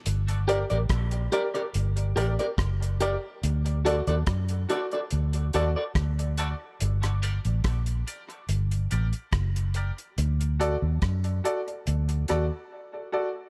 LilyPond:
<<
  \new Staff \with { instrumentName = "Clean electric guitar" } { \time 4/4 \key g \minor \tempo 4 = 71 r8 <g' bes' d''>16 <g' bes' d''>16 r8 <g' bes' d''>16 <g' bes' d''>16 r8 <g' bes' d''>16 <g' bes' d''>16 r8 <g' bes' d''>16 r16 | r8 <fis' a' d''>16 <fis' a' d''>16 r8 <fis' a' d''>16 <fis' a' d''>16 r8 <fis' a' d''>16 <fis' a' d''>16 r8 <fis' a' d''>16 r16 | r8 <g' bes' d''>16 r2. r16 | r1 | }
  \new Staff \with { instrumentName = "Upright piano" } { \time 4/4 \key g \minor r8 <g' bes' d''>16 r8. <g' bes' d''>16 <bes' d''>16 r8 <g' bes' d''>16 r8. <g' bes' d''>16 r16 | r8 <fis' a' d''>16 r8. <fis' a' d''>16 <a' d''>16 r8 <fis' a' d''>16 r8. <fis' a' d''>16 r16 | r8 <g' bes' d''>16 r8. <g' bes' d''>16 <bes' d''>16 r8 <g' bes' d''>16 r8. <g' bes' d''>16 r16 | r8 <fis' a' d''>16 r8. <fis' a' d''>16 <a' d''>16 r8 <fis' a' d''>16 r8 <a' d''>16 <fis' a' d''>16 r16 | }
  \new Staff \with { instrumentName = "Fingered electric bass" } { \clef bass \time 4/4 \key g \minor g,,8. a,,16 bes,,8 r8 g,,8 a,,16 r16 fis,,8. r16 | d,8. ees,16 fis,8 r8 d,8 ees,16 r16 d,8. r16 | g,,8. a,,16 bes,,8 r8 g,,8 a,,16 r16 fis,,8. r16 | d,8. ees,16 fis,8 r8 d,8 ees,16 r4 r16 | }
  \new DrumStaff \with { instrumentName = "Drums" } \drummode { \time 4/4 hh16 hh16 hh16 hh16 <hh bd ss>16 hh16 hh16 hh16 hh16 hh16 hh16 hh16 <hh bd ss>16 hh16 hh8 | hh16 hh16 hh16 hh16 <hh bd ss>16 hh16 hh16 hh16 hh16 hh16 hh8 <hh bd ss>16 hh16 hh8 | hh16 <hh ss>16 hh16 hh16 <hh bd ss>16 hh16 hh16 hh16 hh16 hh16 hh16 hh16 <hh bd ss>16 hh16 hh16 hh16 | hh16 hh16 hh8 <hh bd ss>16 hh16 hh16 hh16 hh16 hh16 <hh ss>8 r4 | }
>>